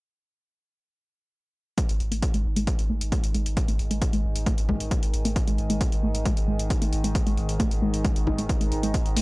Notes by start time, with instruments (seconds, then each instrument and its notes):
1.78 synth drone G#2 D#3, synth arpeggio sound G#3, ambient pad B3, kick, closed hi-hat
1.89 sub bass G#1, ambient pad D#5, closed hi-hat
1.98 sub bass G#1, ambient pad G#4 G#5, closed hi-hat
2.12 sub bass G#1, synth arpeggio sound A3, closed hi-hat
2.22 kick, closed hi-hat
2.34 sub bass G#1, synth arpeggio sound G#3, closed hi-hat
2.45 sub bass G#1
2.56 sub bass G#1, synth arpeggio sound G#3, closed hi-hat
2.67 kick, closed hi-hat
2.79 sub bass G#1, closed hi-hat
2.90 sub bass G#1, synth arpeggio sound A3
3.01 sub bass G#1, closed hi-hat
3.12 synth arpeggio sound G#3, kick, closed hi-hat
3.24 sub bass G#1, closed hi-hat
3.34 sub bass G#1, synth arpeggio sound G#3, closed hi-hat
3.46 sub bass G#1, closed hi-hat
3.57 kick, closed hi-hat
3.68 sub bass G#1, synth arpeggio sound A3, closed hi-hat
3.79 sub bass G#1, closed hi-hat
3.91 sub bass G#1, synth arpeggio sound G#3, closed hi-hat
4.02 kick, closed hi-hat
4.13 sub bass G#1, synth arpeggio sound G#3, closed hi-hat
4.24 sub bass G#1
4.36 sub bass G#1, closed hi-hat
4.46 synth arpeggio sound A3, kick, closed hi-hat
4.58 sub bass G#1, closed hi-hat
4.69 sub bass G#1, synth arpeggio sound G#3, kick
4.80 sub bass G#1, closed hi-hat
4.91 synth arpeggio sound G#3, kick, closed hi-hat
5.03 sub bass G#1, closed hi-hat
5.14 sub bass G#1, closed hi-hat
5.25 sub bass G#1, synth arpeggio sound A3, closed hi-hat
5.36 kick, closed hi-hat
5.47 sub bass G#1, synth arpeggio sound G#3, closed hi-hat
5.58 sub bass G#1, closed hi-hat
5.70 sub bass G#1, synth arpeggio sound G#3, closed hi-hat
5.81 kick, closed hi-hat
5.92 sub bass G#1, closed hi-hat
6.03 sub bass G#1, synth arpeggio sound A3
6.15 sub bass G#1, closed hi-hat
6.25 synth arpeggio sound G#3, kick, closed hi-hat
6.37 sub bass G#1, closed hi-hat
6.48 sub bass G#1, synth arpeggio sound G#3
6.59 sub bass G#1, closed hi-hat
6.70 kick, closed hi-hat
6.82 sub bass G#1, synth arpeggio sound A3, closed hi-hat
6.93 sub bass G#1, closed hi-hat
7.04 sub bass G#1, synth arpeggio sound G#3, closed hi-hat
7.15 kick, closed hi-hat
7.27 sub bass G#1, synth arpeggio sound G#3, closed hi-hat
7.37 sub bass G#1, closed hi-hat
7.49 sub bass G#1, closed hi-hat
7.60 synth arpeggio sound A3, kick, closed hi-hat
7.71 sub bass G#1, closed hi-hat
7.82 sub bass G#1, synth arpeggio sound G#3
7.94 sub bass G#1, closed hi-hat
8.05 synth arpeggio sound G#3, kick, closed hi-hat
8.16 sub bass G#1, closed hi-hat
8.27 sub bass G#1, synth arpeggio sound D#4, kick
8.38 sub bass G#1, synth arpeggio sound G#3, closed hi-hat
8.49 kick, closed hi-hat
8.61 sub bass G#1, synth arpeggio sound G#3, closed hi-hat
8.72 sub bass G#1, closed hi-hat
8.83 sub bass G#1, synth arpeggio sound G#3, closed hi-hat
8.94 kick, closed hi-hat
9.06 sub bass G#1, closed hi-hat
9.15 sub bass G#1, synth arpeggio sound A3, ambient pad C#6, open hi-hat